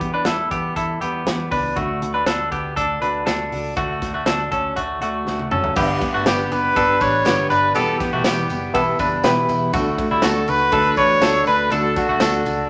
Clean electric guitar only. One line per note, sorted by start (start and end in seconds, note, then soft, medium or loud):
0.00 0.12 B3 medium
0.00 0.12 G4 medium
0.14 0.27 D4 medium
0.14 0.26 B4 medium
0.26 0.51 E4 medium
0.26 0.51 A4 medium
0.51 0.77 B3 medium
0.51 0.76 G4 medium
0.76 1.02 E4 medium
0.76 1.01 A4 medium
1.01 1.49 B3 medium
1.01 1.48 G4 medium
1.51 1.77 D4 medium
1.51 1.77 B4 medium
1.76 2.12 A3 medium
1.76 2.12 F#4 medium
2.14 2.26 D4 medium
2.14 2.26 B4 medium
2.27 2.52 D4 medium
2.27 2.51 A4 medium
2.52 2.77 B3 soft
2.52 2.76 G4 medium
2.76 3.01 D4 medium
2.76 3.01 A4 medium
3.02 3.26 D4 soft
3.02 3.26 B4 medium
3.26 3.74 D4 medium
3.26 3.74 A4 medium
3.77 4.12 A3 medium
3.77 4.12 F#4 medium
4.14 4.27 A3 medium
4.14 4.26 F#4 medium
4.27 4.52 D4 medium
4.27 4.50 A4 medium
4.52 4.77 C#4 medium
4.52 4.76 A4 medium
4.76 5.01 A3 medium
4.76 5.00 F#4 medium
5.02 5.49 A3 medium
5.02 5.49 F#4 medium
5.52 5.77 C#4 medium
5.52 5.76 A4 medium
5.77 6.12 B3 medium
5.77 6.12 G4 loud
6.14 6.27 A3 medium
6.14 6.26 F#4 medium
6.27 6.74 B3 medium
6.27 6.73 G4 medium
6.76 7.00 D4 medium
6.76 7.00 A4 medium
7.01 7.26 D4 medium
7.01 7.25 B4 medium
7.26 7.51 B3 medium
7.26 7.50 G4 medium
7.50 7.76 D4 medium
7.50 7.75 B4 medium
7.75 8.11 B3 medium
7.75 8.10 G4 loud
8.13 8.26 A3 medium
8.13 8.25 F#4 medium
8.25 8.72 B3 medium
8.25 8.72 G4 medium
8.75 9.00 E4 medium
8.75 8.99 A4 medium
9.00 9.25 D4 medium
9.00 9.23 B4 medium
9.24 9.71 E4 medium
9.24 9.71 B4 medium
9.74 10.09 A3 medium
9.74 10.09 F#4 medium
10.11 10.24 G3 medium
10.11 10.24 E4 medium
10.23 10.70 A3 medium
10.23 10.70 F#4 medium
10.73 10.97 D4 medium
10.73 10.97 A4 medium
10.98 11.22 D4 medium
10.98 11.22 B4 medium
11.22 11.47 D4 medium
11.22 11.47 A4 medium
11.48 11.71 D4 medium
11.48 11.72 B4 medium
11.72 12.07 D4 medium
11.72 12.07 A4 loud
12.09 12.22 A3 medium
12.09 12.21 F#4 medium
12.21 12.68 D4 medium
12.21 12.68 A4 medium